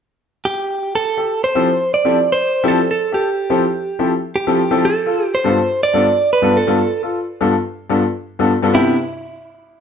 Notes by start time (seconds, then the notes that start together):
0.45 G4
0.95 A4
1.17 G4 A4
1.44 C5
1.55 F3 C4 E4 G4 A4
1.94 D5
2.05 F3 C4 E4 G4 A4
2.32 C5
2.63 F3 C4 E4 G4 A4
2.68 A4
2.91 A4
3.12 G4 A4
3.50 F3 C4 E4 G4 A4
3.99 F3 C4 E4 G4 A4
4.36 G4
4.47 F3 C4 E4 G4 A4
4.71 F3 C4 E4 G4 A4
4.85 A4
5.06 F4 A4
5.35 C5
5.44 G2 B3 D4 F4 A4
5.83 D5
5.94 G2 B3 D4 F4 A4
6.33 B4
6.42 G2 B3 D4 F4 A4
6.57 A4
6.67 G2 B3 D4 F4 A4
7.03 F4 A4
7.41 G2 B3 D4 F4 A4
7.90 G2 B3 D4 F4 A4
8.39 G2 B3 D4 F4 A4
8.63 G2 B3 D4 F4 A4
8.73 C3 B3 D4 E4 G4